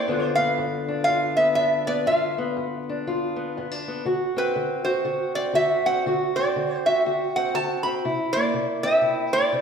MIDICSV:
0, 0, Header, 1, 3, 480
1, 0, Start_track
1, 0, Tempo, 497925
1, 65, Time_signature, 4, 2, 24, 8
1, 9267, End_track
2, 0, Start_track
2, 0, Title_t, "Resonator guitar played with a steel bar"
2, 0, Program_c, 0, 25
2, 0, Note_on_c, 0, 74, 91
2, 328, Note_off_c, 0, 74, 0
2, 342, Note_on_c, 0, 77, 99
2, 993, Note_off_c, 0, 77, 0
2, 1004, Note_on_c, 0, 77, 97
2, 1314, Note_off_c, 0, 77, 0
2, 1317, Note_on_c, 0, 76, 88
2, 1486, Note_off_c, 0, 76, 0
2, 1497, Note_on_c, 0, 76, 96
2, 1772, Note_off_c, 0, 76, 0
2, 1804, Note_on_c, 0, 74, 78
2, 1994, Note_off_c, 0, 74, 0
2, 1996, Note_on_c, 0, 77, 95
2, 2724, Note_off_c, 0, 77, 0
2, 4223, Note_on_c, 0, 71, 73
2, 4657, Note_off_c, 0, 71, 0
2, 4671, Note_on_c, 0, 72, 77
2, 5120, Note_off_c, 0, 72, 0
2, 5160, Note_on_c, 0, 74, 90
2, 5334, Note_off_c, 0, 74, 0
2, 5353, Note_on_c, 0, 76, 95
2, 5621, Note_off_c, 0, 76, 0
2, 5650, Note_on_c, 0, 78, 88
2, 5819, Note_off_c, 0, 78, 0
2, 6130, Note_on_c, 0, 74, 73
2, 6613, Note_on_c, 0, 76, 75
2, 6617, Note_off_c, 0, 74, 0
2, 7091, Note_off_c, 0, 76, 0
2, 7095, Note_on_c, 0, 78, 92
2, 7261, Note_off_c, 0, 78, 0
2, 7277, Note_on_c, 0, 81, 99
2, 7545, Note_off_c, 0, 81, 0
2, 7549, Note_on_c, 0, 83, 80
2, 7727, Note_off_c, 0, 83, 0
2, 8028, Note_on_c, 0, 74, 98
2, 8477, Note_off_c, 0, 74, 0
2, 8515, Note_on_c, 0, 76, 98
2, 8990, Note_off_c, 0, 76, 0
2, 8994, Note_on_c, 0, 74, 103
2, 9267, Note_off_c, 0, 74, 0
2, 9267, End_track
3, 0, Start_track
3, 0, Title_t, "Steel-string acoustic guitar"
3, 0, Program_c, 1, 25
3, 71, Note_on_c, 1, 43, 73
3, 74, Note_on_c, 1, 50, 65
3, 80, Note_on_c, 1, 59, 62
3, 92, Note_on_c, 1, 62, 66
3, 104, Note_on_c, 1, 65, 69
3, 360, Note_off_c, 1, 59, 0
3, 364, Note_on_c, 1, 59, 60
3, 510, Note_off_c, 1, 43, 0
3, 556, Note_on_c, 1, 43, 78
3, 848, Note_off_c, 1, 62, 0
3, 852, Note_on_c, 1, 62, 58
3, 993, Note_off_c, 1, 43, 0
3, 1031, Note_on_c, 1, 43, 71
3, 1035, Note_off_c, 1, 65, 0
3, 1039, Note_on_c, 1, 65, 63
3, 1313, Note_off_c, 1, 59, 0
3, 1325, Note_on_c, 1, 59, 58
3, 1471, Note_off_c, 1, 43, 0
3, 1501, Note_on_c, 1, 43, 69
3, 1506, Note_off_c, 1, 62, 0
3, 1510, Note_on_c, 1, 62, 60
3, 1795, Note_off_c, 1, 59, 0
3, 1807, Note_on_c, 1, 59, 59
3, 1946, Note_off_c, 1, 43, 0
3, 1968, Note_off_c, 1, 59, 0
3, 1969, Note_off_c, 1, 65, 0
3, 1987, Note_on_c, 1, 43, 72
3, 1993, Note_on_c, 1, 65, 66
3, 2296, Note_on_c, 1, 59, 61
3, 2428, Note_off_c, 1, 43, 0
3, 2475, Note_on_c, 1, 43, 76
3, 2786, Note_off_c, 1, 62, 0
3, 2790, Note_on_c, 1, 62, 57
3, 2912, Note_off_c, 1, 43, 0
3, 2949, Note_off_c, 1, 65, 0
3, 2963, Note_on_c, 1, 65, 67
3, 2964, Note_on_c, 1, 43, 64
3, 3230, Note_off_c, 1, 59, 0
3, 3242, Note_on_c, 1, 59, 58
3, 3397, Note_off_c, 1, 43, 0
3, 3437, Note_off_c, 1, 59, 0
3, 3443, Note_on_c, 1, 43, 67
3, 3445, Note_off_c, 1, 62, 0
3, 3449, Note_on_c, 1, 59, 53
3, 3581, Note_off_c, 1, 59, 0
3, 3581, Note_on_c, 1, 62, 47
3, 3740, Note_on_c, 1, 59, 55
3, 3876, Note_off_c, 1, 43, 0
3, 3891, Note_off_c, 1, 65, 0
3, 3894, Note_off_c, 1, 59, 0
3, 3895, Note_off_c, 1, 50, 0
3, 3906, Note_on_c, 1, 50, 78
3, 3910, Note_off_c, 1, 62, 0
3, 3915, Note_on_c, 1, 66, 73
3, 4207, Note_on_c, 1, 60, 59
3, 4348, Note_off_c, 1, 50, 0
3, 4392, Note_on_c, 1, 50, 71
3, 4677, Note_off_c, 1, 66, 0
3, 4681, Note_on_c, 1, 66, 63
3, 4831, Note_off_c, 1, 50, 0
3, 4865, Note_on_c, 1, 50, 69
3, 4868, Note_off_c, 1, 66, 0
3, 4871, Note_on_c, 1, 66, 67
3, 5161, Note_off_c, 1, 60, 0
3, 5165, Note_on_c, 1, 60, 51
3, 5307, Note_off_c, 1, 50, 0
3, 5335, Note_off_c, 1, 66, 0
3, 5335, Note_on_c, 1, 50, 70
3, 5347, Note_on_c, 1, 66, 68
3, 5645, Note_off_c, 1, 60, 0
3, 5649, Note_on_c, 1, 60, 59
3, 5782, Note_off_c, 1, 50, 0
3, 5803, Note_off_c, 1, 66, 0
3, 5842, Note_on_c, 1, 50, 77
3, 5850, Note_on_c, 1, 66, 72
3, 5871, Note_off_c, 1, 60, 0
3, 6149, Note_on_c, 1, 60, 60
3, 6276, Note_off_c, 1, 50, 0
3, 6324, Note_on_c, 1, 50, 76
3, 6609, Note_off_c, 1, 66, 0
3, 6620, Note_on_c, 1, 66, 62
3, 6756, Note_off_c, 1, 50, 0
3, 6796, Note_off_c, 1, 66, 0
3, 6803, Note_on_c, 1, 50, 67
3, 6808, Note_on_c, 1, 66, 63
3, 7089, Note_off_c, 1, 60, 0
3, 7101, Note_on_c, 1, 60, 57
3, 7236, Note_off_c, 1, 50, 0
3, 7261, Note_off_c, 1, 66, 0
3, 7271, Note_on_c, 1, 50, 67
3, 7275, Note_on_c, 1, 66, 67
3, 7564, Note_off_c, 1, 60, 0
3, 7576, Note_on_c, 1, 60, 60
3, 7709, Note_off_c, 1, 50, 0
3, 7725, Note_off_c, 1, 66, 0
3, 7731, Note_off_c, 1, 60, 0
3, 7758, Note_on_c, 1, 48, 78
3, 7762, Note_on_c, 1, 64, 66
3, 8060, Note_on_c, 1, 58, 63
3, 8193, Note_off_c, 1, 48, 0
3, 8230, Note_on_c, 1, 48, 75
3, 8520, Note_on_c, 1, 60, 62
3, 8668, Note_off_c, 1, 48, 0
3, 8678, Note_off_c, 1, 64, 0
3, 8689, Note_on_c, 1, 48, 73
3, 8691, Note_on_c, 1, 64, 64
3, 8985, Note_off_c, 1, 58, 0
3, 8997, Note_on_c, 1, 58, 59
3, 9138, Note_off_c, 1, 48, 0
3, 9171, Note_off_c, 1, 60, 0
3, 9182, Note_on_c, 1, 48, 71
3, 9184, Note_on_c, 1, 60, 59
3, 9267, Note_off_c, 1, 48, 0
3, 9267, Note_off_c, 1, 58, 0
3, 9267, Note_off_c, 1, 60, 0
3, 9267, Note_off_c, 1, 64, 0
3, 9267, End_track
0, 0, End_of_file